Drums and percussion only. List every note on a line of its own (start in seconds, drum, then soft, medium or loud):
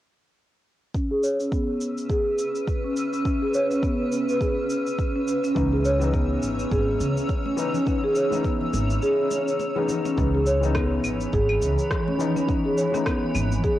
0.94 kick medium
0.94 cabasa soft
1.23 cabasa medium
1.40 cabasa soft
1.52 kick medium
1.52 cabasa soft
1.81 cabasa medium
1.98 cabasa soft
2.10 kick loud
2.10 cabasa soft
2.39 cabasa medium
2.56 cabasa soft
2.68 kick medium
2.68 cabasa soft
2.97 cabasa medium
3.13 cabasa soft
3.25 kick loud
3.25 cabasa soft
3.54 cabasa medium
3.71 cabasa soft
3.83 kick loud
3.83 cabasa soft
4.12 cabasa medium
4.29 cabasa soft
4.41 kick medium
4.41 cabasa soft
4.70 cabasa medium
4.86 cabasa soft
4.98 kick loud
4.98 cabasa soft
5.28 cabasa medium
5.44 cabasa soft
5.56 kick loud
5.56 cabasa soft
5.85 cabasa medium
6.02 cabasa soft
6.14 kick loud
6.14 cabasa soft
6.43 cabasa medium
6.59 cabasa soft
6.71 kick loud
6.71 cabasa soft
7.01 cabasa medium
7.17 cabasa soft
7.29 kick loud
7.29 cabasa soft
7.46 high conga medium
7.58 cabasa medium
7.74 low conga medium
7.74 cabasa soft
7.87 kick loud
7.87 cabasa soft
8.16 cabasa medium
8.32 high conga medium
8.32 cabasa soft
8.45 kick medium
8.45 cabasa soft
8.61 low conga medium
8.74 cabasa medium
8.90 cabasa soft
9.02 cabasa soft
9.31 muted conga soft
9.31 cabasa medium
9.48 cabasa soft
9.59 muted conga medium
9.59 cabasa soft
9.76 high conga medium
9.89 low conga medium
9.89 cabasa medium
10.05 muted conga medium
10.05 cabasa soft
10.18 kick loud
10.18 cabasa soft
10.46 cabasa medium
10.63 cabasa soft
10.75 kick medium
10.75 cross-stick medium
10.75 cabasa soft
10.75 claves medium
11.04 cabasa medium
11.04 claves medium
11.21 cabasa soft
11.33 kick loud
11.33 cabasa soft
11.49 claves medium
11.62 cabasa medium
11.79 cabasa soft
11.91 kick loud
11.91 cross-stick loud
11.91 cabasa soft
12.08 high conga medium
12.20 cabasa medium
12.36 low conga medium
12.36 cabasa soft
12.48 kick loud
12.48 cabasa soft
12.78 cabasa medium
12.94 cross-stick soft
12.94 high conga medium
12.94 cabasa soft
13.06 kick medium
13.06 cross-stick medium
13.06 cabasa soft
13.06 claves medium
13.35 cabasa medium
13.35 claves medium
13.52 cabasa soft
13.64 kick loud
13.64 cabasa soft